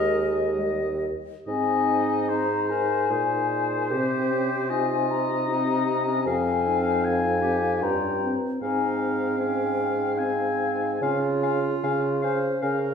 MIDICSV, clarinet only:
0, 0, Header, 1, 2, 480
1, 0, Start_track
1, 0, Key_signature, -4, "major"
1, 0, Tempo, 914634
1, 776, Time_signature, 3, 2, 24, 8
1, 776, Tempo, 817439
1, 1736, Tempo, 784314
1, 6056, Tempo, 831025
1, 7016, Tempo, 787402
1, 7691, End_track
2, 0, Start_track
2, 0, Title_t, "Clarinet"
2, 0, Program_c, 0, 71
2, 0, Note_on_c, 0, 70, 80
2, 299, Note_off_c, 0, 70, 0
2, 773, Note_on_c, 0, 63, 84
2, 1497, Note_on_c, 0, 70, 75
2, 1506, Note_off_c, 0, 63, 0
2, 1734, Note_on_c, 0, 68, 70
2, 1743, Note_off_c, 0, 70, 0
2, 2222, Note_on_c, 0, 67, 82
2, 2232, Note_off_c, 0, 68, 0
2, 2704, Note_on_c, 0, 65, 72
2, 2713, Note_off_c, 0, 67, 0
2, 3182, Note_off_c, 0, 65, 0
2, 3185, Note_on_c, 0, 63, 74
2, 3549, Note_on_c, 0, 61, 64
2, 3558, Note_off_c, 0, 63, 0
2, 3662, Note_on_c, 0, 60, 78
2, 3672, Note_off_c, 0, 61, 0
2, 4374, Note_on_c, 0, 67, 72
2, 4384, Note_off_c, 0, 60, 0
2, 4616, Note_on_c, 0, 65, 64
2, 4625, Note_off_c, 0, 67, 0
2, 4935, Note_off_c, 0, 65, 0
2, 5104, Note_on_c, 0, 63, 73
2, 5554, Note_off_c, 0, 63, 0
2, 5576, Note_on_c, 0, 61, 77
2, 6059, Note_on_c, 0, 60, 77
2, 6067, Note_off_c, 0, 61, 0
2, 6543, Note_off_c, 0, 60, 0
2, 6549, Note_on_c, 0, 65, 87
2, 7246, Note_off_c, 0, 65, 0
2, 7262, Note_on_c, 0, 72, 76
2, 7498, Note_on_c, 0, 70, 71
2, 7507, Note_off_c, 0, 72, 0
2, 7691, Note_off_c, 0, 70, 0
2, 7691, End_track
0, 0, End_of_file